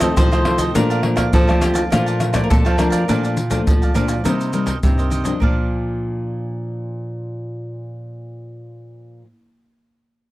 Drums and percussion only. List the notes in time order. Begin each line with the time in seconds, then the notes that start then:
0.00 pandeiro, tamborim, maracas, surdo
0.17 pandeiro, maracas, surdo
0.33 pandeiro, tamborim, maracas
0.45 pandeiro, tamborim, surdo
0.58 pandeiro, maracas, surdo
0.75 pandeiro, maracas, surdo
0.91 pandeiro, maracas
1.03 pandeiro, tamborim
1.17 pandeiro, tamborim, maracas, surdo
1.33 pandeiro, maracas, surdo
1.49 pandeiro, tamborim, maracas, surdo
1.62 pandeiro, tamborim, maracas
1.75 pandeiro, maracas
1.92 pandeiro, tamborim, maracas, surdo
2.07 pandeiro, maracas
2.20 pandeiro, tamborim, maracas
2.34 pandeiro, tamborim, maracas, surdo
2.51 pandeiro, maracas, surdo
2.66 pandeiro, tamborim, maracas
2.79 pandeiro, tamborim, maracas
2.92 pandeiro, maracas, surdo
3.09 pandeiro, maracas, surdo
3.25 pandeiro, maracas
3.37 pandeiro, maracas
3.51 pandeiro, maracas, surdo
3.67 pandeiro, maracas, surdo
3.83 pandeiro, maracas, surdo
3.95 pandeiro, maracas
4.08 pandeiro, maracas
4.25 pandeiro, maracas, surdo
4.41 pandeiro, maracas
4.53 pandeiro, maracas
4.67 pandeiro, maracas, surdo
4.83 pandeiro, maracas, surdo
4.99 pandeiro, maracas
5.12 pandeiro, maracas, surdo
5.25 pandeiro, maracas, surdo
5.42 surdo